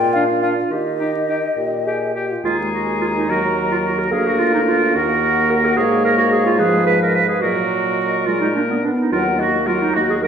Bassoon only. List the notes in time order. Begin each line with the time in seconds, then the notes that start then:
Already playing: A#2
0.71 D#3
1.57 A#2
2.44 D#2
4.12 D2
4.96 D#2
5.77 G#2
7.43 A#2
8.27 A#2
9.11 D#2
9.95 D#2